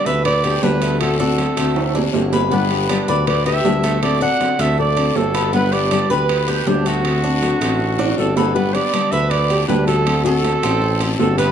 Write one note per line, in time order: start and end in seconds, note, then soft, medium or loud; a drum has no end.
0.06 0.59 D2 medium
0.06 0.24 B3 soft
0.06 0.24 D4 soft
0.06 0.24 G4 medium
0.06 0.43 B4 medium
0.06 0.25 C5 medium
0.06 0.24 E5 loud
0.06 short guiro medium
0.24 0.63 B4 medium
0.24 0.64 D5 loud
0.24 muted nylon-string guitar stroke medium
0.24 high timbale medium
0.24 long guiro medium
0.44 0.62 B3 soft
0.44 0.62 D4 soft
0.44 0.62 G4 medium
0.44 high timbale medium
0.62 1.51 D2 medium
0.62 0.99 D3 medium
0.62 1.00 G3 medium
0.62 1.00 B3 medium
0.62 0.81 D4 medium
0.62 1.00 D4 medium
0.62 1.01 G4 medium
0.62 1.00 G4 medium
0.62 1.00 B4 loud
0.62 low timbale medium
0.62 short guiro medium
0.82 1.18 A3 medium
0.82 high timbale medium
0.82 short guiro medium
1.00 1.18 D3 medium
1.00 1.19 A3 medium
1.00 1.18 C4 medium
1.00 1.18 F#4 medium
1.00 1.18 A4 medium
1.00 high timbale loud
1.00 long guiro medium
1.19 1.38 A3 soft
1.19 1.38 C4 soft
1.19 1.56 D4 medium
1.19 1.37 F#4 soft
1.19 2.02 F#4 medium
1.19 2.02 A4 medium
1.38 1.56 D3 medium
1.38 1.57 A3 medium
1.38 1.57 C4 medium
1.38 1.56 F#4 medium
1.38 high timbale medium
1.38 low timbale medium
1.38 short guiro medium
1.57 2.10 D2 medium
1.57 1.94 A3 medium
1.57 1.75 A3 soft
1.57 1.75 C4 soft
1.57 1.75 F#4 soft
1.57 high timbale medium
1.57 short guiro medium
1.76 muted nylon-string guitar stroke medium
1.76 high timbale medium
1.76 long guiro medium
1.94 2.13 A3 soft
1.94 2.13 C4 soft
1.94 2.32 D4 medium
1.94 2.13 F#4 soft
1.94 low timbale medium
2.14 3.02 G1 medium
2.14 2.50 D3 medium
2.14 2.51 A3 medium
2.14 2.51 C4 medium
2.14 2.51 F#4 medium
2.14 low timbale medium
2.14 short guiro medium
2.33 2.51 B4 medium
2.33 low timbale medium
2.33 short guiro medium
2.51 2.70 D3 medium
2.51 2.70 G3 medium
2.51 2.88 B3 medium
2.51 2.70 B3 medium
2.51 2.70 D4 medium
2.51 3.05 G4 medium
2.51 2.69 G4 medium
2.51 3.04 B4 medium
2.51 long guiro medium
2.70 2.89 B3 soft
2.70 2.89 D4 soft
2.70 2.89 G4 medium
2.70 high timbale medium
2.89 3.07 D3 medium
2.89 3.08 G3 medium
2.89 3.08 B3 medium
2.89 3.08 D4 medium
2.89 3.07 D4 medium
2.89 3.07 G4 medium
2.89 high timbale loud
2.89 low timbale medium
2.89 short guiro medium
3.08 3.61 D2 medium
3.08 3.26 B3 soft
3.08 3.26 D4 soft
3.08 3.26 G4 medium
3.08 3.45 B4 medium
3.08 3.26 B4 medium
3.08 3.26 D5 medium
3.08 short guiro medium
3.26 3.45 B4 medium
3.26 3.45 D5 medium
3.26 muted nylon-string guitar stroke medium
3.26 high timbale medium
3.26 long guiro medium
3.45 3.64 B3 soft
3.45 3.64 D4 soft
3.45 3.64 G4 soft
3.45 3.64 G4 medium
3.45 3.99 B4 medium
3.45 3.99 E5 loud
3.45 high timbale medium
3.64 4.26 D2 medium
3.64 4.01 D3 medium
3.64 4.02 G3 medium
3.64 4.02 B3 medium
3.64 3.83 D4 medium
3.64 4.02 D4 medium
3.64 4.02 G4 medium
3.64 low timbale medium
3.64 short guiro medium
3.83 4.20 A3 medium
3.83 high timbale medium
3.83 short guiro medium
4.02 4.21 D3 medium
4.02 4.21 A3 medium
4.02 4.21 C4 medium
4.02 4.20 F#4 medium
4.02 4.20 A4 medium
4.02 4.20 D5 loud
4.02 high timbale medium
4.02 long guiro medium
4.21 4.39 A3 soft
4.21 4.40 C4 soft
4.21 4.58 D4 medium
4.21 4.39 F#4 medium
4.21 4.60 D5 medium
4.21 4.62 F#5 loud
4.40 4.58 D3 medium
4.40 4.59 A3 medium
4.40 4.59 C4 medium
4.40 4.58 F#4 medium
4.40 high timbale medium
4.40 low timbale medium
4.40 short guiro medium
4.59 5.12 D2 medium
4.59 4.96 A3 medium
4.59 4.77 A3 soft
4.59 4.77 C4 soft
4.59 4.77 F#4 medium
4.59 4.79 C5 medium
4.59 4.79 E5 loud
4.59 high timbale medium
4.59 short guiro medium
4.78 5.17 A4 medium
4.78 5.18 D5 loud
4.78 muted nylon-string guitar stroke medium
4.78 long guiro medium
4.96 5.14 A3 soft
4.96 5.15 C4 soft
4.96 5.33 D4 medium
4.96 5.15 F#4 soft
4.96 high timbale medium
5.15 6.04 G1 medium
5.15 5.52 D3 medium
5.15 5.53 A3 medium
5.15 5.53 C4 medium
5.15 5.53 F#4 medium
5.15 5.54 F#4 medium
5.15 5.54 A4 loud
5.15 low timbale medium
5.15 short guiro medium
5.34 5.53 B4 medium
5.34 high timbale loud
5.34 short guiro medium
5.53 5.71 D3 medium
5.53 5.72 G3 medium
5.53 5.90 B3 medium
5.53 5.72 B3 medium
5.53 5.72 D4 medium
5.53 5.73 G4 medium
5.53 5.71 G4 medium
5.53 5.74 B4 loud
5.53 long guiro medium
5.72 5.91 B3 soft
5.72 5.91 D4 soft
5.72 5.90 G4 medium
5.72 6.11 B4 medium
5.72 6.10 D5 loud
5.72 high timbale medium
5.91 6.09 D3 medium
5.91 6.09 G3 medium
5.91 6.10 B3 medium
5.91 6.09 D4 medium
5.91 6.09 G4 medium
5.91 high timbale medium
5.91 low timbale medium
5.91 short guiro medium
6.10 6.63 D2 medium
6.10 6.28 B3 soft
6.10 6.29 D4 soft
6.10 6.28 G4 medium
6.10 6.63 G4 medium
6.10 6.47 B4 medium
6.10 6.69 B4 medium
6.10 short guiro medium
6.29 muted nylon-string guitar stroke medium
6.29 high timbale medium
6.29 long guiro medium
6.47 6.66 B3 soft
6.47 6.66 D4 soft
6.47 6.66 G4 medium
6.47 high timbale medium
6.66 7.55 D2 medium
6.66 7.03 D3 medium
6.66 7.03 G3 medium
6.66 7.04 B3 medium
6.66 6.85 D4 medium
6.66 7.04 D4 medium
6.66 6.85 D4 medium
6.66 7.04 G4 medium
6.66 6.88 G4 medium
6.66 low timbale medium
6.66 short guiro medium
6.86 7.22 A3 medium
6.86 8.18 D4 medium
6.86 8.18 F#4 medium
6.86 high timbale medium
6.86 short guiro medium
7.04 7.22 D3 medium
7.04 7.23 A3 medium
7.04 7.23 C4 medium
7.04 7.22 F#4 medium
7.04 high timbale medium
7.04 long guiro medium
7.23 7.41 A3 soft
7.23 7.42 C4 soft
7.23 7.60 D4 medium
7.23 7.41 F#4 soft
7.42 7.60 D3 medium
7.42 7.60 A3 medium
7.42 7.61 C4 medium
7.42 7.60 F#4 medium
7.42 high timbale medium
7.42 low timbale medium
7.42 short guiro medium
7.61 8.14 A1 medium
7.61 7.98 A3 medium
7.61 7.79 A3 soft
7.61 7.79 C4 soft
7.61 high timbale medium
7.61 short guiro medium
7.80 muted nylon-string guitar stroke medium
7.80 long guiro medium
7.99 8.17 A3 soft
7.99 8.17 C4 soft
7.99 8.36 D4 medium
7.99 8.17 F#4 soft
7.99 high timbale medium
8.18 8.79 G1 medium
8.18 8.54 D3 medium
8.18 8.55 A3 medium
8.18 8.55 C4 medium
8.18 8.35 F#4 medium
8.18 8.56 F#4 medium
8.18 8.36 A4 medium
8.18 short guiro medium
8.36 8.54 F#4 medium
8.36 8.54 A4 medium
8.36 8.55 B4 medium
8.36 low timbale medium
8.36 short guiro medium
8.55 8.74 D3 medium
8.55 8.74 G3 medium
8.55 8.92 B3 medium
8.55 8.74 B3 medium
8.55 8.74 D4 medium
8.55 8.74 G4 medium
8.55 8.73 G4 medium
8.55 8.76 B4 loud
8.55 long guiro medium
8.74 8.92 B3 soft
8.74 8.93 D4 soft
8.74 8.93 G4 medium
8.74 9.12 B4 medium
8.74 9.13 D5 loud
8.74 high timbale medium
8.93 9.11 D3 medium
8.93 9.11 G3 medium
8.93 9.12 B3 medium
8.93 9.12 D4 medium
8.93 9.11 G4 medium
8.93 high timbale loud
8.93 low timbale medium
8.93 short guiro medium
9.12 9.65 D2 medium
9.12 9.30 B3 soft
9.12 9.30 D4 soft
9.12 9.30 G4 soft
9.12 9.49 B4 medium
9.12 9.30 C5 medium
9.12 9.32 E5 loud
9.12 short guiro medium
9.30 9.68 B4 loud
9.30 9.68 D5 loud
9.30 muted nylon-string guitar stroke medium
9.30 high timbale medium
9.30 long guiro medium
9.49 9.68 B3 soft
9.49 9.68 D4 soft
9.49 9.68 G4 soft
9.49 9.68 G4 medium
9.49 high timbale medium
9.68 10.57 D2 loud
9.68 10.05 D3 medium
9.68 10.06 G3 medium
9.68 10.06 B3 medium
9.68 9.87 D4 medium
9.68 10.06 D4 medium
9.68 9.86 G4 medium
9.68 10.06 G4 medium
9.68 9.86 B4 loud
9.68 low timbale medium
9.68 short guiro medium
9.87 10.22 F#4 medium
9.87 10.22 A4 loud
9.87 high timbale medium
9.87 short guiro medium
10.06 10.24 D3 medium
10.06 10.25 A3 medium
10.06 10.24 C4 medium
10.06 10.24 F#4 medium
10.06 high timbale loud
10.06 long guiro medium
10.24 10.43 A3 soft
10.24 10.43 C4 medium
10.24 11.15 F#4 medium
10.24 10.43 F#4 medium
10.24 11.02 A4 loud
10.24 10.62 A4 medium
10.43 10.62 D3 medium
10.43 10.62 A3 medium
10.43 10.62 C4 medium
10.43 10.61 F#4 medium
10.43 high timbale medium
10.43 low timbale medium
10.43 short guiro medium
10.62 11.15 A1 loud
10.62 10.80 A3 soft
10.62 11.00 C4 loud
10.62 10.81 C4 soft
10.62 10.81 F#4 medium
10.62 high timbale medium
10.62 short guiro medium
10.81 muted nylon-string guitar stroke medium
10.81 long guiro medium
11.00 11.18 A3 soft
11.00 11.19 C4 soft
11.00 11.18 F#4 soft
11.00 11.37 A4 medium
11.00 high timbale medium
11.19 11.52 G1 medium
11.19 11.52 D3 medium
11.19 11.52 A3 medium
11.19 11.52 C4 medium
11.19 11.37 F#4 medium
11.19 11.52 F#4 medium
11.19 11.37 A4 medium
11.19 low timbale medium
11.19 short guiro medium
11.38 11.52 G4 medium
11.38 11.52 B4 loud
11.38 11.52 B4 medium
11.38 high timbale medium
11.38 short guiro medium